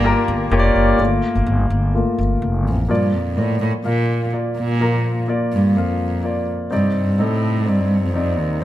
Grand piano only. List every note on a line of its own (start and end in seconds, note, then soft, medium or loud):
0.00 1.01 G2 medium
0.00 1.02 D3 medium
0.00 0.04 A#3 medium
0.00 0.46 A#3 medium
0.00 0.04 F4 medium
0.00 0.05 G4 medium
0.00 1.02 C5 medium
0.00 0.59 D5 medium
0.04 0.46 F4 medium
0.04 0.47 G4 medium
0.04 0.47 A#4 medium
0.51 0.94 A#3 medium
0.51 0.94 F4 medium
0.51 0.94 G4 medium
0.51 0.59 C#5 medium
0.59 0.98 D5 loud
0.99 1.32 A3 soft
0.99 1.32 A#3 soft
0.99 1.33 F4 medium
1.94 2.16 A3 soft
1.94 2.16 A#3 soft
1.94 2.16 F4 soft
2.88 3.57 A#2 soft
2.88 3.57 F3 soft
2.88 3.31 A#3 medium
2.88 3.32 F4 medium
2.88 3.32 D5 medium
3.36 3.79 A#3 medium
3.36 3.79 F4 medium
3.36 3.79 D5 medium
3.84 4.26 A#3 medium
3.84 4.27 F4 soft
3.84 4.27 F5 medium
4.32 4.74 A#3 medium
4.32 4.75 F4 soft
4.32 4.75 D5 medium
4.80 5.48 A#2 soft
4.80 5.48 F3 soft
4.80 5.22 A#3 medium
4.80 5.23 F4 medium
4.80 5.23 A#4 medium
5.28 5.70 A#3 medium
5.28 5.70 F4 medium
5.28 5.71 D5 medium
5.76 6.18 A#3 medium
5.76 6.18 F4 medium
5.76 6.19 F5 medium
6.23 6.65 A#3 medium
6.23 6.66 F4 medium
6.23 6.66 D5 medium
6.71 7.39 C3 soft
6.71 7.39 G3 soft
6.71 7.13 C4 medium
6.71 7.13 D#4 medium
6.71 7.14 D5 medium
7.18 7.61 C4 medium
7.18 7.61 D#4 medium
7.18 7.61 A4 medium
7.66 8.08 C4 medium
7.66 8.09 D#4 soft
7.66 8.09 D5 medium
8.14 8.56 C4 medium
8.14 8.57 D#4 medium
8.14 8.57 D5 medium